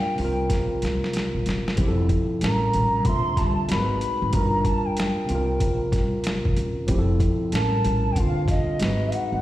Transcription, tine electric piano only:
0.00 0.18 G3 medium
0.00 0.18 D4 soft
0.00 0.19 F4 soft
0.00 0.23 A#4 medium
0.15 1.73 C3 medium
0.15 1.75 C4 soft
0.21 1.76 F4 medium
0.21 1.78 A#4 medium
1.77 2.41 F3 medium
1.77 2.42 C4 soft
1.77 2.43 E4 medium
1.82 1.88 G4 medium
1.88 2.47 A4 medium
2.40 3.05 A2 soft
2.40 3.06 G3 soft
2.40 3.07 C#4 soft
2.45 3.07 A#4 medium
3.05 3.69 D3 medium
3.05 3.70 C4 medium
3.05 3.71 F4 medium
3.09 3.71 E5 medium
3.68 4.33 G#3 medium
3.68 4.34 D#4 medium
3.68 4.35 F#4 medium
3.73 3.79 A#4 medium
3.80 4.39 B4 medium
4.32 5.29 G3 medium
4.32 5.29 D4 soft
4.32 5.30 F4 soft
4.37 5.31 A#4 medium
5.25 6.84 C3 medium
5.25 6.85 C4 soft
5.31 6.87 F4 medium
5.31 6.88 A#4 medium
6.87 7.52 F3 medium
6.87 7.53 C4 medium
6.87 7.53 E4 medium
6.92 6.98 G4 medium
6.99 7.57 A4 medium
7.51 8.16 A2 medium
7.51 8.17 G3 medium
7.51 8.17 C#4 soft
7.56 8.18 A#4 medium
8.15 8.79 D3 medium
8.15 8.80 C4 medium
8.20 8.82 F4 medium
8.79 9.42 G#3 medium
8.79 9.42 D#4 medium
8.79 9.42 F#4 medium
8.84 9.42 B4 medium

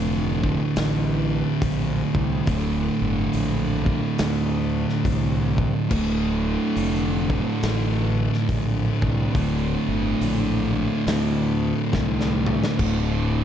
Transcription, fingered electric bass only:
0.00 0.55 F1 medium
0.77 1.41 A1 loud
1.62 2.02 A#1 medium
2.15 2.40 C2 medium
2.48 2.88 D1 medium
3.01 3.26 G1 medium
3.34 3.99 A#1 medium
4.20 4.84 D2 medium
5.05 5.70 C2 medium
5.91 6.56 D1 medium
6.76 7.42 F1 medium
7.63 8.28 A1 medium
8.49 8.89 A#1 medium
9.02 9.27 C2 medium
9.35 9.75 D1 medium
9.88 10.13 G1 medium
10.21 10.86 A#1 medium
11.07 11.72 D2 medium
11.94 12.58 C2 medium
12.79 13.44 D1 medium

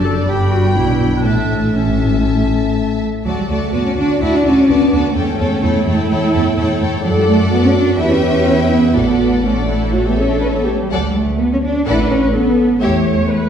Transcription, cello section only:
0.00 0.24 F#2 soft
0.28 0.75 G2 soft
0.77 1.26 B2 soft
1.26 3.05 A2 soft
3.25 3.30 F#3 soft
3.38 3.42 G3 soft
3.48 3.72 A3 soft
3.73 3.78 B3 soft
3.85 3.97 C#4 soft
3.98 4.21 D4 soft
4.22 4.33 E4 medium
4.35 4.46 D4 soft
4.45 4.69 C#4 soft
4.69 5.16 B3 soft
5.16 6.78 A3 soft
7.04 7.09 F#3 medium
7.17 7.28 G3 medium
7.28 7.51 A3 medium
7.52 7.63 B3 medium
7.64 7.76 C#4 medium
7.76 7.99 D4 medium
7.99 8.11 E4 medium
8.11 8.71 C#4 medium
8.71 8.94 B3 soft
8.96 9.44 B3 soft
9.45 10.06 A3 soft
10.07 10.19 B3 soft
10.18 10.30 C#4 soft
10.31 10.43 D4 soft
10.42 10.47 C#4 soft
10.57 10.67 B3 soft
10.67 10.79 A3 soft
10.81 10.85 G3 soft
10.91 10.96 F#3 soft
11.03 11.15 G3 soft
11.15 11.39 A3 medium
11.39 11.51 B3 medium
11.52 11.57 C#4 soft
11.63 11.86 D4 soft
11.87 11.98 E4 medium
12.00 12.11 D4 medium
12.11 12.34 C#4 medium
12.34 12.81 B3 medium
12.81 13.49 A3 medium

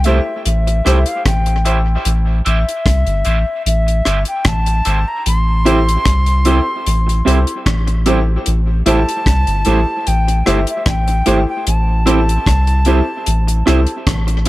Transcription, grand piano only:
0.06 0.20 E4 medium
0.06 0.20 G4 medium
0.06 0.20 A4 medium
0.06 0.20 C5 loud
0.86 1.00 E4 medium
0.86 1.00 G4 medium
0.86 1.00 A4 medium
0.86 1.00 C5 medium
1.65 1.79 E4 medium
1.65 1.79 G4 medium
1.65 1.80 A4 medium
1.65 1.80 C5 medium
2.45 2.60 E4 medium
2.45 2.60 G4 medium
2.45 2.60 A4 medium
2.45 2.60 C5 loud
3.25 3.39 E4 medium
3.25 3.39 G4 medium
3.25 3.40 A4 medium
3.25 3.40 C5 loud
4.05 4.20 E4 medium
4.05 4.20 G4 medium
4.05 4.20 A4 medium
4.05 4.20 C5 medium
4.85 5.00 E4 medium
4.85 5.00 G4 medium
4.85 5.00 A4 medium
4.85 5.00 C5 medium
5.65 5.80 E4 medium
5.65 5.80 G4 medium
5.65 5.80 A4 medium
5.65 5.80 C5 loud
6.46 6.60 E4 medium
6.46 6.60 G4 medium
6.46 6.60 A4 medium
6.46 6.60 C5 medium
7.26 7.40 E4 medium
7.26 7.40 G4 medium
7.26 7.40 A4 medium
7.26 7.41 C5 medium
8.06 8.20 E4 medium
8.06 8.20 G4 medium
8.06 8.20 A4 medium
8.06 8.21 C5 loud
8.86 9.00 E4 loud
8.86 9.00 G4 medium
8.86 9.01 A4 medium
8.86 9.01 C5 loud
9.66 9.80 E4 medium
9.66 9.80 G4 medium
9.66 9.80 A4 medium
9.66 9.80 C5 medium
10.46 10.60 E4 medium
10.46 10.60 G4 medium
10.46 10.60 A4 medium
10.46 10.61 C5 loud
11.26 11.40 E4 medium
11.26 11.40 G4 medium
11.26 11.41 A4 medium
11.26 11.41 C5 loud
12.06 12.20 E4 medium
12.06 12.21 G4 medium
12.06 12.21 A4 medium
12.06 12.21 C5 loud
12.86 13.00 E4 medium
12.86 13.01 G4 medium
12.86 13.01 A4 medium
12.86 13.01 C5 medium
13.66 13.81 E4 medium
13.66 13.81 G4 medium
13.66 13.81 A4 medium
13.66 13.81 C5 medium

